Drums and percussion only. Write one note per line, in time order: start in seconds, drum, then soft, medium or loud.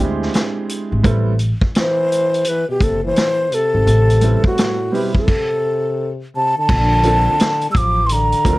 0.22 snare soft
0.34 snare medium
0.34 closed hi-hat medium
0.69 closed hi-hat medium
1.04 kick loud
1.04 closed hi-hat medium
1.39 closed hi-hat medium
1.61 kick medium
1.75 snare loud
1.75 closed hi-hat medium
2.12 closed hi-hat medium
2.34 closed hi-hat soft
2.45 closed hi-hat medium
2.81 kick medium
2.81 closed hi-hat medium
3.16 snare medium
3.16 closed hi-hat medium
3.52 closed hi-hat medium
3.87 closed hi-hat medium
4.10 closed hi-hat medium
4.21 closed hi-hat medium
4.44 kick medium
4.58 snare loud
4.58 closed hi-hat medium
4.95 open hi-hat soft
5.15 kick medium
5.28 kick loud
5.28 crash medium
6.69 kick loud
6.69 crash medium
7.03 closed hi-hat medium
7.40 snare loud
7.40 closed hi-hat medium
7.61 closed hi-hat medium
7.75 kick medium
7.75 closed hi-hat medium
8.09 closed hi-hat loud
8.32 closed hi-hat soft
8.45 kick medium
8.45 closed hi-hat medium